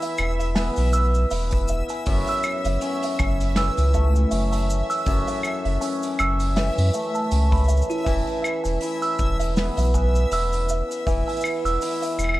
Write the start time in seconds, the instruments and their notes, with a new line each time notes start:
Already playing: hammered dulcimer E3 B3 E4, synth texture E5 E6
0.02 music box E5, open hi-hat, cabasa
0.18 sub bass E1, cabasa, claves
0.40 music box E5, open hi-hat, cabasa
0.55 hammered dulcimer B3, music box G#5, snare, open hi-hat, cabasa
0.76 sub bass B1, open hi-hat, cabasa
0.93 hammered dulcimer B3, music box E6, cabasa
1.14 cabasa
1.31 sub bass E1, hammered dulcimer E4, music box E5, open hi-hat, cabasa
1.51 kick, open hi-hat, cabasa
1.68 music box E5, cabasa
1.89 music box G#5, open hi-hat, cabasa
2.06 sub bass F#1, hammered dulcimer F#2, kick, open hi-hat, cabasa
2.27 music box E6, open hi-hat, cabasa
2.43 cabasa, claves
2.64 sub bass F#1, music box E5, open hi-hat, cabasa
2.81 hammered dulcimer C#4, open hi-hat, cabasa
3.02 music box E5, open hi-hat, cabasa
3.19 sub bass F#1, music box G#5, kick, cabasa, claves
3.40 open hi-hat, cabasa
3.56 hammered dulcimer E3, music box E6, snare, open hi-hat, cabasa
3.77 sub bass C#2, open hi-hat, cabasa
3.94 hammered dulcimer A3, music box E5, kick, cabasa
4.16 cabasa
4.31 sub bass F#1, hammered dulcimer C#4, music box E5, open hi-hat, cabasa
4.53 music box G#5, open hi-hat, cabasa
4.70 cabasa
4.90 music box E6, open hi-hat, cabasa
5.06 sub bass F#1, hammered dulcimer F#2, kick, open hi-hat, cabasa
5.28 music box E5, open hi-hat, cabasa
5.43 cabasa, claves
5.65 sub bass F#1, music box E5, open hi-hat
5.81 hammered dulcimer C#4, music box G#5, open hi-hat, cabasa
6.03 open hi-hat, cabasa
6.19 sub bass F#1, music box E6, cabasa, claves
6.40 open hi-hat, cabasa
6.56 hammered dulcimer E3, music box E5, snare, open hi-hat, cabasa
6.78 sub bass F#2, open hi-hat, cabasa
6.94 hammered dulcimer A3, music box E5, cabasa
7.15 music box A5, cabasa
7.31 sub bass C#2, hammered dulcimer C#4, open hi-hat, cabasa
7.52 music box B5, kick, open hi-hat, cabasa
7.57 cabasa
7.64 cabasa
7.68 music box E5, cabasa
7.77 cabasa
7.82 cabasa
7.90 music box E4, open hi-hat, cabasa
7.98 open hi-hat
8.05 sub bass E1, hammered dulcimer E3, music box E5, kick, open hi-hat, cabasa
8.17 open hi-hat
8.27 open hi-hat
8.42 music box E5, cabasa, claves
8.64 sub bass E1, music box G#5, open hi-hat, cabasa
8.81 hammered dulcimer E4, open hi-hat, cabasa
9.02 music box E6, open hi-hat, cabasa
9.19 sub bass E1, kick, cabasa
9.39 music box E5, open hi-hat, cabasa
9.57 hammered dulcimer B3, snare, open hi-hat, cabasa
9.77 sub bass B1, music box E5, open hi-hat, cabasa
9.94 hammered dulcimer B3, music box G#5, kick, cabasa
10.15 cabasa
10.31 sub bass E1, hammered dulcimer E4, music box E6, open hi-hat, cabasa
10.53 open hi-hat, cabasa
10.69 music box E5, cabasa
10.91 open hi-hat, cabasa
11.07 sub bass E1, hammered dulcimer E3, music box E5, kick, open hi-hat, cabasa
11.28 music box G#5, open hi-hat, cabasa
11.33 cabasa
11.36 open hi-hat, cabasa
11.40 cabasa, claves
11.45 open hi-hat, cabasa
11.55 open hi-hat
11.65 sub bass E1, music box E6, open hi-hat, cabasa
11.82 hammered dulcimer E4, open hi-hat, cabasa
12.02 music box E5, open hi-hat, cabasa
12.19 sub bass E1, cabasa, claves
12.24 claves
12.29 claves
12.34 claves